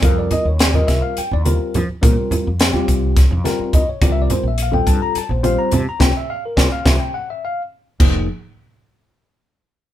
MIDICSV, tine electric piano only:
0, 0, Header, 1, 2, 480
1, 0, Start_track
1, 0, Tempo, 569260
1, 28, Time_signature, 7, 3, 24, 8
1, 8378, End_track
2, 0, Start_track
2, 0, Title_t, "Tine electric piano"
2, 0, Program_c, 0, 4
2, 13, Note_on_c, 0, 55, 72
2, 20, Note_on_c, 0, 60, 65
2, 20, Note_on_c, 0, 65, 62
2, 21, Note_on_c, 0, 70, 82
2, 40, Note_on_c, 0, 77, 83
2, 150, Note_off_c, 0, 77, 0
2, 154, Note_on_c, 0, 74, 76
2, 267, Note_off_c, 0, 74, 0
2, 273, Note_on_c, 0, 75, 97
2, 387, Note_off_c, 0, 75, 0
2, 405, Note_on_c, 0, 73, 70
2, 408, Note_off_c, 0, 55, 0
2, 411, Note_off_c, 0, 60, 0
2, 412, Note_off_c, 0, 65, 0
2, 412, Note_off_c, 0, 70, 0
2, 513, Note_off_c, 0, 73, 0
2, 523, Note_on_c, 0, 74, 75
2, 625, Note_on_c, 0, 55, 70
2, 629, Note_on_c, 0, 60, 66
2, 631, Note_on_c, 0, 65, 64
2, 632, Note_off_c, 0, 74, 0
2, 632, Note_on_c, 0, 70, 79
2, 633, Note_on_c, 0, 75, 80
2, 736, Note_on_c, 0, 76, 85
2, 746, Note_off_c, 0, 75, 0
2, 858, Note_off_c, 0, 76, 0
2, 861, Note_on_c, 0, 77, 87
2, 980, Note_off_c, 0, 77, 0
2, 996, Note_on_c, 0, 79, 90
2, 1014, Note_off_c, 0, 55, 0
2, 1016, Note_off_c, 0, 60, 0
2, 1017, Note_off_c, 0, 65, 0
2, 1017, Note_off_c, 0, 70, 0
2, 1108, Note_off_c, 0, 79, 0
2, 1125, Note_on_c, 0, 74, 84
2, 1191, Note_off_c, 0, 74, 0
2, 1221, Note_on_c, 0, 55, 76
2, 1224, Note_on_c, 0, 65, 66
2, 1225, Note_on_c, 0, 60, 70
2, 1229, Note_on_c, 0, 70, 86
2, 1534, Note_off_c, 0, 55, 0
2, 1536, Note_off_c, 0, 60, 0
2, 1536, Note_off_c, 0, 65, 0
2, 1538, Note_off_c, 0, 70, 0
2, 1700, Note_on_c, 0, 55, 78
2, 1702, Note_on_c, 0, 60, 70
2, 1707, Note_on_c, 0, 65, 74
2, 1708, Note_on_c, 0, 70, 82
2, 2091, Note_off_c, 0, 55, 0
2, 2092, Note_off_c, 0, 60, 0
2, 2095, Note_off_c, 0, 65, 0
2, 2095, Note_off_c, 0, 70, 0
2, 2301, Note_on_c, 0, 55, 84
2, 2301, Note_on_c, 0, 60, 77
2, 2305, Note_on_c, 0, 65, 75
2, 2308, Note_on_c, 0, 67, 90
2, 2691, Note_off_c, 0, 55, 0
2, 2691, Note_off_c, 0, 60, 0
2, 2693, Note_off_c, 0, 65, 0
2, 2695, Note_off_c, 0, 67, 0
2, 2900, Note_on_c, 0, 55, 86
2, 2904, Note_on_c, 0, 60, 80
2, 2904, Note_on_c, 0, 65, 80
2, 2907, Note_on_c, 0, 70, 98
2, 3155, Note_on_c, 0, 75, 83
2, 3213, Note_off_c, 0, 55, 0
2, 3215, Note_off_c, 0, 60, 0
2, 3215, Note_off_c, 0, 65, 0
2, 3217, Note_off_c, 0, 70, 0
2, 3267, Note_off_c, 0, 75, 0
2, 3282, Note_on_c, 0, 73, 74
2, 3382, Note_on_c, 0, 55, 70
2, 3384, Note_on_c, 0, 65, 67
2, 3385, Note_on_c, 0, 60, 72
2, 3389, Note_on_c, 0, 70, 82
2, 3390, Note_off_c, 0, 73, 0
2, 3400, Note_on_c, 0, 74, 89
2, 3470, Note_off_c, 0, 74, 0
2, 3475, Note_on_c, 0, 76, 103
2, 3548, Note_off_c, 0, 76, 0
2, 3556, Note_on_c, 0, 74, 90
2, 3629, Note_off_c, 0, 74, 0
2, 3633, Note_on_c, 0, 72, 89
2, 3746, Note_off_c, 0, 72, 0
2, 3772, Note_off_c, 0, 55, 0
2, 3773, Note_off_c, 0, 60, 0
2, 3773, Note_off_c, 0, 65, 0
2, 3775, Note_off_c, 0, 70, 0
2, 3775, Note_on_c, 0, 76, 77
2, 3877, Note_off_c, 0, 76, 0
2, 3900, Note_on_c, 0, 77, 78
2, 3974, Note_on_c, 0, 55, 74
2, 3974, Note_on_c, 0, 60, 67
2, 3976, Note_on_c, 0, 65, 64
2, 3979, Note_on_c, 0, 69, 81
2, 3997, Note_on_c, 0, 79, 89
2, 4000, Note_off_c, 0, 77, 0
2, 4108, Note_off_c, 0, 79, 0
2, 4108, Note_on_c, 0, 81, 91
2, 4223, Note_off_c, 0, 81, 0
2, 4234, Note_on_c, 0, 82, 98
2, 4346, Note_off_c, 0, 82, 0
2, 4365, Note_on_c, 0, 81, 86
2, 4368, Note_off_c, 0, 55, 0
2, 4368, Note_off_c, 0, 60, 0
2, 4369, Note_off_c, 0, 65, 0
2, 4370, Note_off_c, 0, 69, 0
2, 4472, Note_off_c, 0, 81, 0
2, 4476, Note_on_c, 0, 72, 58
2, 4572, Note_off_c, 0, 72, 0
2, 4577, Note_on_c, 0, 60, 75
2, 4578, Note_on_c, 0, 55, 78
2, 4581, Note_on_c, 0, 65, 76
2, 4582, Note_on_c, 0, 72, 91
2, 4600, Note_on_c, 0, 77, 89
2, 4709, Note_off_c, 0, 77, 0
2, 4709, Note_on_c, 0, 82, 96
2, 4824, Note_off_c, 0, 82, 0
2, 4842, Note_on_c, 0, 81, 81
2, 4892, Note_off_c, 0, 55, 0
2, 4892, Note_off_c, 0, 60, 0
2, 4894, Note_off_c, 0, 65, 0
2, 4894, Note_off_c, 0, 72, 0
2, 4951, Note_off_c, 0, 81, 0
2, 4965, Note_on_c, 0, 82, 96
2, 5055, Note_on_c, 0, 58, 92
2, 5056, Note_on_c, 0, 65, 94
2, 5061, Note_on_c, 0, 60, 92
2, 5064, Note_on_c, 0, 79, 96
2, 5072, Note_off_c, 0, 82, 0
2, 5136, Note_off_c, 0, 58, 0
2, 5137, Note_off_c, 0, 65, 0
2, 5140, Note_off_c, 0, 60, 0
2, 5181, Note_off_c, 0, 79, 0
2, 5204, Note_on_c, 0, 76, 87
2, 5311, Note_off_c, 0, 76, 0
2, 5312, Note_on_c, 0, 77, 98
2, 5425, Note_off_c, 0, 77, 0
2, 5443, Note_on_c, 0, 70, 58
2, 5537, Note_on_c, 0, 74, 87
2, 5540, Note_on_c, 0, 58, 98
2, 5540, Note_on_c, 0, 60, 92
2, 5542, Note_on_c, 0, 65, 100
2, 5551, Note_off_c, 0, 70, 0
2, 5619, Note_off_c, 0, 58, 0
2, 5619, Note_off_c, 0, 60, 0
2, 5621, Note_off_c, 0, 65, 0
2, 5658, Note_off_c, 0, 74, 0
2, 5667, Note_on_c, 0, 77, 98
2, 5778, Note_on_c, 0, 60, 96
2, 5779, Note_on_c, 0, 58, 91
2, 5780, Note_on_c, 0, 65, 96
2, 5783, Note_off_c, 0, 77, 0
2, 5786, Note_on_c, 0, 76, 80
2, 5858, Note_off_c, 0, 60, 0
2, 5859, Note_off_c, 0, 58, 0
2, 5859, Note_off_c, 0, 65, 0
2, 5901, Note_on_c, 0, 79, 94
2, 5903, Note_off_c, 0, 76, 0
2, 6020, Note_off_c, 0, 79, 0
2, 6022, Note_on_c, 0, 78, 85
2, 6141, Note_off_c, 0, 78, 0
2, 6157, Note_on_c, 0, 76, 79
2, 6268, Note_off_c, 0, 76, 0
2, 6279, Note_on_c, 0, 77, 90
2, 6419, Note_off_c, 0, 77, 0
2, 6744, Note_on_c, 0, 58, 71
2, 6746, Note_on_c, 0, 53, 77
2, 6746, Note_on_c, 0, 63, 68
2, 6746, Note_on_c, 0, 68, 84
2, 6969, Note_off_c, 0, 58, 0
2, 6970, Note_off_c, 0, 53, 0
2, 6970, Note_off_c, 0, 63, 0
2, 6970, Note_off_c, 0, 68, 0
2, 8378, End_track
0, 0, End_of_file